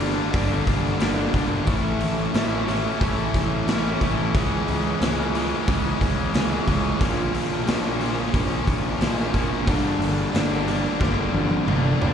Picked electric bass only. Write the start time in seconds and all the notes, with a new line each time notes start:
Already playing: G1
0.34 G1
0.67 G1
1.01 G1
1.34 G1
1.67 A1
2.01 A1
2.34 A1
3.01 A1
3.35 A1
3.68 A1
4.02 A1
4.34 C#2
4.68 C#2
5.01 C#2
5.68 C#2
6.02 C#2
6.35 C#2
6.68 C#2
7.01 A#1
7.34 A#1
7.67 A#1
8.34 A#1
8.67 A#1
9.01 A#1
9.34 A#1
9.67 G1
9.99 G1
10.34 G1
11.01 G1
11.33 G1
11.67 G1
12.01 G1